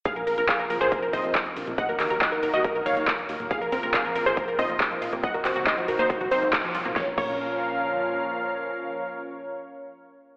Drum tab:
CC |----------------|----------------|----------------|----------------|
RD |--x---x---x---x-|--x---x---x---x-|--x---x---x---x-|--x---x---x---x-|
HH |xxoxxxoxxxoxxxox|xxoxxxoxxxoxxxox|xxoxxxoxxxoxxxox|xxoxxxoxxxoxxxox|
SH |xxxxxxxxxxxxxxxx|xxxxxxxxxxxxxxxx|xxxxxxxxxxxxxxxx|xxxxxxxxxxxxxxxx|
CP |----x-------x---|--x-x-------x---|----x-------x---|--x-x-------x---|
SD |----------------|----------------|----------------|----------------|
T2 |---------------o|------o--o-----o|---------------o|------o--o-----o|
BD |o---o---o-o-o---|o---o---o---o---|o---o---o-o-o---|o---o---o---o---|

CC |--x-------------|----------------|
RD |----------------|----------------|
HH |----------------|----------------|
SH |----------------|----------------|
CP |----------------|----------------|
SD |o---------------|----------------|
T2 |----------------|----------------|
BD |o-o-------------|----------------|